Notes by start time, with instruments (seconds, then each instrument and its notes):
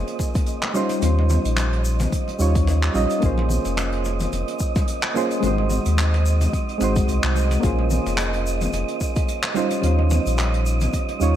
Already playing: synth keys A#3 C#4 F4 G#4 C5, synth texture D#5
0.07 closed hi-hat
0.19 kick, muted conga, shaker
0.35 kick, closed hi-hat, high conga, shaker
0.46 closed hi-hat, shaker
0.63 clap, muted conga
0.74 synth keys G3 C#4 D#4 F4 C5, high conga, shaker
0.89 closed hi-hat, muted conga, shaker
1.00 sub bass D#2, synth keys G3 C#4 D#4, closed hi-hat, low conga, shaker
1.04 synth keys F4 C5
1.19 high conga
1.30 muted conga, low conga, shaker
1.45 sub bass A#1, closed hi-hat, shaker
1.57 clap, closed hi-hat, muted conga, high conga, shaker
1.73 closed hi-hat
1.85 shaker
2.00 closed hi-hat, muted conga, high conga, low conga, shaker
2.12 kick, closed hi-hat, shaker
2.28 closed hi-hat, muted conga
2.39 sub bass D#2, synth keys G3 C#4 D#4 F4 C#5, shaker
2.55 kick, closed hi-hat, high conga, shaker
2.67 closed hi-hat, muted conga, shaker
2.83 clap
2.94 sub bass A#1, synth keys G3 C#4 D#4 F4 D#5, muted conga, high conga, shaker
3.10 closed hi-hat, shaker
3.20 sub bass A#1, synth keys A#3 C#4 F4, kick, closed hi-hat, shaker
3.24 synth keys G#4 C5
3.38 muted conga, high conga
3.49 low conga, shaker
3.65 sub bass F1, closed hi-hat, muted conga, shaker
3.77 clap, closed hi-hat, high conga, shaker
3.92 closed hi-hat
4.05 muted conga, shaker
4.20 closed hi-hat, high conga, low conga, shaker
4.32 sub bass F1, closed hi-hat, muted conga, shaker
4.48 closed hi-hat
4.59 kick, shaker
4.76 kick, closed hi-hat, muted conga, high conga, shaker
4.87 closed hi-hat, shaker
5.03 clap, muted conga
5.14 synth keys A#3 C#4 F4 G#4 C5, high conga, shaker
5.31 closed hi-hat, shaker
5.40 sub bass G#1, synth keys G#3 C4 D#4, closed hi-hat, muted conga, low conga, shaker
5.45 synth keys F#4 C5
5.58 high conga
5.70 muted conga, low conga, shaker
5.85 sub bass D#2, closed hi-hat, shaker
5.97 clap, closed hi-hat, high conga, shaker
6.14 closed hi-hat, muted conga
6.26 shaker
6.41 closed hi-hat, muted conga, high conga, low conga, shaker
6.53 kick, closed hi-hat, shaker
6.69 closed hi-hat
6.78 sub bass G#1, synth keys G#3 C4 D#4, muted conga, shaker
6.82 synth keys F#4 C5
6.96 kick, closed hi-hat, high conga, shaker
7.08 sub bass C2, closed hi-hat, muted conga, shaker
7.23 sub bass C2, clap, closed hi-hat
7.36 high conga, shaker
7.51 closed hi-hat, muted conga, shaker
7.60 sub bass A#1, synth keys A#3 C#4 F4, kick, muted conga, shaker
7.64 synth keys G#4 C5, closed hi-hat
7.79 high conga
7.90 low conga, shaker
8.06 sub bass F1, closed hi-hat, muted conga, shaker
8.17 clap, closed hi-hat, high conga, shaker
8.33 closed hi-hat, muted conga
8.46 shaker
8.61 closed hi-hat, high conga, low conga, shaker
8.73 sub bass F1, closed hi-hat, muted conga, shaker
8.88 closed hi-hat
9.01 kick, muted conga, shaker
9.16 kick, closed hi-hat, high conga, shaker
9.28 closed hi-hat, shaker
9.43 clap, muted conga
9.54 synth keys G3 C#4 D#4 F4 C5, high conga, shaker
9.70 closed hi-hat, muted conga, shaker
9.80 sub bass D#2, synth keys G3 C#4 D#4, closed hi-hat, low conga, shaker
9.85 synth keys F4 C5
9.99 high conga
10.10 muted conga, low conga, shaker
10.26 sub bass A#1, closed hi-hat, shaker
10.37 clap, closed hi-hat, muted conga, high conga, shaker
10.53 closed hi-hat
10.66 shaker
10.81 closed hi-hat, muted conga, high conga, low conga, shaker
10.93 kick, closed hi-hat, shaker
11.08 closed hi-hat, muted conga
11.20 sub bass D#2, synth keys G3 C#4 D#4 F4 C#5, shaker